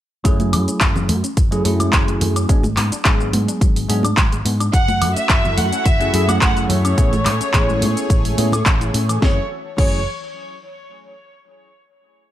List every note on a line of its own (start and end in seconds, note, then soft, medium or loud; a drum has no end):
0.24 0.54 F#1 loud
0.24 0.29 E3 medium
0.24 1.09 F#3 loud
0.24 1.09 A3 medium
0.24 1.09 C#4 medium
0.24 1.09 E4 medium
0.24 1.10 G#4 loud
0.24 kick loud
0.24 closed hi-hat medium
0.24 shaker medium
0.40 0.46 F#3 medium
0.40 closed hi-hat soft
0.40 high conga medium
0.40 shaker soft
0.53 0.65 F#2 loud
0.53 0.60 A3 medium
0.53 open hi-hat loud
0.53 high woodblock medium
0.68 0.71 C#4 medium
0.68 muted fingered electric bass stroke soft
0.68 closed hi-hat medium
0.68 shaker medium
0.81 1.10 F#1 medium
0.81 0.88 E3 medium
0.81 kick loud
0.81 clap loud
0.81 closed hi-hat medium
0.81 shaker medium
0.96 0.99 F#3 medium
0.96 low conga medium
0.96 shaker soft
1.08 1.21 F#2 loud
1.08 1.16 A3 loud
1.08 open hi-hat loud
1.08 high conga medium
1.24 1.30 C#4 medium
1.24 closed hi-hat medium
1.24 shaker medium
1.37 1.60 F#1 loud
1.37 1.41 E3 medium
1.37 kick loud
1.37 closed hi-hat medium
1.37 shaker medium
1.51 1.62 F#3 medium
1.51 1.58 F#3 medium
1.51 1.62 A3 medium
1.51 1.62 C#4 medium
1.51 1.62 E4 medium
1.51 1.62 G#4 loud
1.51 closed hi-hat soft
1.51 shaker soft
1.64 1.88 F#2 medium
1.64 2.46 F#3 medium
1.64 2.46 A3 medium
1.64 1.72 A3 medium
1.64 2.46 C#4 medium
1.64 2.46 E4 medium
1.64 2.46 G#4 medium
1.64 open hi-hat loud
1.80 1.84 C#4 medium
1.80 closed hi-hat medium
1.80 high conga medium
1.80 high woodblock medium
1.80 shaker medium
1.93 2.16 F#1 loud
1.93 2.00 E3 medium
1.93 kick loud
1.93 clap loud
1.93 closed hi-hat medium
1.93 shaker medium
2.08 2.12 F#3 medium
2.08 closed hi-hat soft
2.08 shaker soft
2.21 2.44 F#2 loud
2.21 2.28 A3 loud
2.21 open hi-hat loud
2.21 low conga medium
2.36 2.42 C#4 medium
2.36 closed hi-hat medium
2.36 high woodblock medium
2.36 shaker medium
2.49 2.79 G#1 loud
2.49 2.64 F#3 medium
2.49 2.53 F#3 medium
2.49 2.64 G#3 medium
2.49 2.64 B3 medium
2.49 2.64 D4 medium
2.49 2.65 G#4 loud
2.49 kick loud
2.49 closed hi-hat medium
2.49 shaker medium
2.63 2.70 G#3 medium
2.63 closed hi-hat soft
2.63 high conga medium
2.63 shaker soft
2.77 2.89 G#2 loud
2.77 2.84 B3 medium
2.77 clap medium
2.77 open hi-hat loud
2.77 high woodblock medium
2.92 2.96 D4 medium
2.92 muted fingered electric bass stroke soft
2.92 closed hi-hat medium
2.92 shaker medium
3.04 3.35 G#1 medium
3.04 3.86 F#3 medium
3.04 3.12 F#3 medium
3.04 3.86 G#3 medium
3.04 3.86 B3 medium
3.04 3.86 D4 medium
3.04 3.87 G#4 medium
3.04 kick loud
3.04 clap loud
3.04 closed hi-hat medium
3.04 shaker medium
3.20 3.24 G#3 medium
3.20 shaker soft
3.33 3.45 G#2 loud
3.33 3.40 B3 loud
3.33 open hi-hat loud
3.33 high conga medium
3.48 3.54 D4 medium
3.48 closed hi-hat medium
3.48 shaker medium
3.61 3.85 G#1 loud
3.61 3.65 F#3 medium
3.61 kick loud
3.61 closed hi-hat medium
3.61 shaker medium
3.76 3.82 G#3 medium
3.76 open hi-hat medium
3.76 shaker soft
3.89 4.12 G#2 medium
3.89 4.04 F#3 medium
3.89 4.04 G#3 medium
3.89 4.04 B3 medium
3.89 3.96 B3 medium
3.89 4.05 D4 medium
3.89 4.05 G#4 medium
3.89 open hi-hat loud
4.03 4.08 D4 medium
4.03 closed hi-hat medium
4.03 high conga medium
4.03 high woodblock medium
4.03 shaker medium
4.17 4.41 G#1 loud
4.17 4.24 F#3 medium
4.17 kick loud
4.17 clap loud
4.17 closed hi-hat medium
4.17 shaker medium
4.32 4.36 G#3 medium
4.32 closed hi-hat soft
4.32 shaker soft
4.45 4.69 G#2 loud
4.45 4.52 B3 loud
4.45 open hi-hat loud
4.60 4.66 D4 medium
4.60 closed hi-hat medium
4.60 high woodblock medium
4.60 shaker medium
4.73 5.03 F#1 loud
4.73 4.77 E3 medium
4.73 9.18 A3 medium
4.73 6.96 E4 medium
4.73 6.96 F#4 medium
4.73 5.13 F#5 loud
4.73 kick loud
4.73 closed hi-hat medium
4.73 shaker medium
4.88 4.94 F#3 medium
4.88 closed hi-hat soft
4.88 high conga loud
4.88 shaker soft
5.01 5.14 F#2 loud
5.01 5.08 A3 medium
5.01 open hi-hat loud
5.01 high woodblock medium
5.16 5.20 C#4 medium
5.16 5.55 E5 loud
5.16 muted fingered electric bass stroke soft
5.16 closed hi-hat medium
5.16 shaker medium
5.29 5.59 F#1 medium
5.29 5.36 E3 medium
5.29 kick loud
5.29 clap loud
5.29 closed hi-hat medium
5.29 shaker medium
5.44 5.48 F#3 medium
5.44 low conga medium
5.44 shaker soft
5.57 5.70 F#2 loud
5.57 5.64 A3 loud
5.57 5.86 F#5 loud
5.57 open hi-hat loud
5.57 high conga medium
5.72 5.78 C#4 medium
5.72 closed hi-hat medium
5.72 shaker medium
5.85 6.09 F#1 loud
5.85 5.90 E3 medium
5.85 6.28 E5 loud
5.85 kick loud
5.85 closed hi-hat medium
5.85 shaker medium
6.00 6.10 F#3 medium
6.00 6.07 F#3 medium
6.00 6.10 A3 medium
6.00 6.11 C#4 medium
6.00 6.11 E4 medium
6.00 6.11 G#4 loud
6.00 closed hi-hat soft
6.00 shaker soft
6.13 6.37 F#2 medium
6.13 6.94 F#3 medium
6.13 6.94 A3 medium
6.13 6.20 A3 medium
6.13 6.95 C#4 medium
6.13 6.95 E4 medium
6.13 6.95 G#4 loud
6.13 open hi-hat loud
6.28 6.32 C#4 medium
6.28 6.40 F#5 loud
6.28 closed hi-hat medium
6.28 high conga loud
6.28 high woodblock medium
6.28 shaker medium
6.41 6.65 F#1 loud
6.41 6.48 E3 medium
6.41 6.68 F#5 loud
6.41 kick loud
6.41 clap loud
6.41 closed hi-hat medium
6.41 shaker medium
6.57 6.60 F#3 medium
6.57 closed hi-hat soft
6.57 shaker soft
6.69 6.93 F#2 loud
6.69 6.76 A3 loud
6.69 8.62 C#5 loud
6.69 open hi-hat loud
6.69 low conga medium
6.85 6.91 C#4 medium
6.85 closed hi-hat medium
6.85 high woodblock medium
6.85 shaker medium
6.98 7.27 A1 loud
6.98 7.02 E3 medium
6.98 7.13 A3 medium
6.98 7.13 B3 medium
6.98 7.13 C#4 medium
6.98 7.13 E4 medium
6.98 9.20 G#4 medium
6.98 7.13 G#4 loud
6.98 9.20 C#5 medium
6.98 kick loud
6.98 closed hi-hat medium
6.98 shaker medium
7.13 7.19 G#3 medium
7.13 closed hi-hat soft
7.13 high conga medium
7.13 shaker soft
7.25 7.38 A2 loud
7.25 7.33 A3 medium
7.25 clap medium
7.25 open hi-hat loud
7.25 high woodblock medium
7.40 7.44 C#4 medium
7.40 muted fingered electric bass stroke soft
7.40 closed hi-hat medium
7.40 shaker medium
7.53 7.83 A1 medium
7.53 7.61 E3 medium
7.53 8.35 A3 medium
7.53 8.35 B3 medium
7.53 8.35 C#4 medium
7.53 8.35 E4 medium
7.53 8.36 G#4 medium
7.53 kick loud
7.53 clap loud
7.53 closed hi-hat medium
7.53 shaker medium
7.69 7.72 G#3 medium
7.69 shaker soft
7.82 7.94 A2 loud
7.82 7.89 A3 loud
7.82 open hi-hat loud
7.82 high conga medium
7.97 8.03 C#4 medium
7.97 closed hi-hat medium
7.97 shaker medium
8.10 8.33 A1 loud
8.10 8.14 E3 medium
8.10 kick loud
8.10 closed hi-hat medium
8.10 shaker medium
8.25 8.31 G#3 medium
8.25 open hi-hat medium
8.25 shaker soft
8.38 8.61 A2 medium
8.38 8.45 G#3 medium
8.38 8.53 A3 medium
8.38 8.53 B3 medium
8.38 8.53 C#4 medium
8.38 8.53 E4 medium
8.38 8.53 G#4 medium
8.38 open hi-hat loud
8.52 8.59 A4 medium
8.52 closed hi-hat soft
8.52 high conga medium
8.52 high woodblock medium
8.52 shaker medium
8.66 8.89 A1 loud
8.66 8.73 A3 loud
8.66 kick loud
8.66 clap loud
8.66 closed hi-hat medium
8.66 shaker medium
8.81 8.90 E4 medium
8.81 closed hi-hat soft
8.81 shaker soft
8.94 9.17 A2 loud
8.94 9.01 C#4 loud
8.94 open hi-hat loud
9.09 9.15 E3 medium
9.09 closed hi-hat medium
9.09 high woodblock medium
9.09 shaker medium
9.21 9.38 F#1 loud
9.21 9.38 E3 loud
9.21 9.38 F#3 medium
9.21 9.38 A3 medium
9.21 9.39 C#4 medium
9.21 9.39 E4 medium
9.21 9.39 G#4 medium
9.21 9.38 C#5 medium
9.21 kick loud
9.21 snare medium
9.77 10.04 F#1 medium
9.77 10.04 E3 loud
9.77 9.99 F#3 medium
9.77 9.99 A3 medium
9.77 9.99 C#4 medium
9.77 10.00 E4 medium
9.77 10.00 G#4 medium
9.77 10.04 C#5 medium
9.77 kick loud
9.77 crash medium